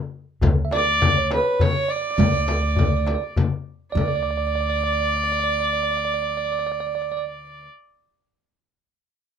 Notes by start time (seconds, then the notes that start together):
0.41 D2, tombak dum, frame drum
0.65 E5
0.71 D5, tombak tek, frame drum
1.02 frame drum, tombak dum
1.18 C#5
1.31 B4, tombak tek, frame drum
1.60 C#5, tombak dum, frame drum
1.88 D5
1.96 D5
2.01 D5
2.11 D5
2.17 D2 D5, tombak dum, frame drum
2.26 D5
2.33 D5
2.41 D5
2.48 tombak tek, frame drum
2.56 D5
2.63 D5
2.68 D5
2.75 D5, tombak dum, frame drum
2.84 D5
2.89 D5
2.97 D5
3.05 D5, tombak tek, frame drum
3.15 D5
3.36 tombak dum, frame drum
3.92 D2 D5, tombak dum
3.97 D5, frame drum
4.08 D5
4.16 D5
4.23 D5
4.31 D5
4.38 D5
4.47 D5
4.56 D5
4.61 D5
4.70 D5
4.76 D5
4.84 D5
4.92 D5
5.01 D5
5.06 D5
5.24 D5
5.32 D5
5.40 D5
5.60 D5
5.67 D5
5.73 D5
5.83 D5
5.91 D5
5.97 D5
6.05 D5
6.14 D5
6.22 D5
6.30 D5
6.37 D5
6.45 D5
6.52 D5
6.59 D5
6.67 D5
6.72 D5
6.80 D5
6.87 D5
6.95 D5
7.02 D5
7.12 D5
7.17 D5